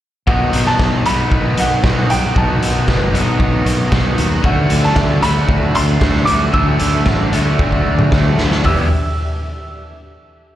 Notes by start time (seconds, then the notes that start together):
0.27 B1 B2 D#3 F#3 B3 D#4 F#4 B4 F#5, kick
0.53 B1, closed hi-hat
0.66 A5, snare
0.79 B1, kick, snare
1.05 B1 B2 D#3 F#3 B3 D#4 F#4 B5, closed hi-hat
1.31 B1, kick
1.57 B1 F#5, closed hi-hat
1.83 B1 D#3 B3 D#4 F#4, kick, snare
2.10 B1 G5, closed hi-hat
2.35 B1 B2 D#3 F#3 B3 D#4 F#4 A5, kick
2.62 B1, closed hi-hat
2.88 F#1, kick, snare
3.14 B1 B2 D#3 F#3 B3 D#4 F#4, closed hi-hat
3.40 B1, kick
3.66 B1, closed hi-hat
3.91 B1 D#3 B3 D#4 F#4, kick, snare
4.18 D#2, closed hi-hat
4.42 D2 D3 F#3 A3 D4 F#4 A4 E5 F#5, kick
4.70 D2, closed hi-hat
4.83 A5, snare
4.96 D2, kick, snare
5.22 D2 D3 F#3 A3 D4 F#4 B5, closed hi-hat
5.49 D2, kick
5.75 D2 C6, closed hi-hat
6.01 D2 A3 D4 F#4, kick, snare
6.15 snare
6.25 D2 D6, closed hi-hat
6.53 D2 D3 F#3 A3 D4 F#4 E6, kick
6.79 D2, closed hi-hat
7.06 A1, kick, snare
7.33 D2 D3 F#3 A3 D4 F#4, closed hi-hat
7.59 D2, kick
7.72 kick
7.87 D2
7.99 mid tom
8.12 D2 A3 D4 F#4, kick, snare
8.38 D2, snare
8.51 snare
8.64 E1 E3 G3 B3 D4 E4 G4 E5 E6, kick, floor tom, open hi-hat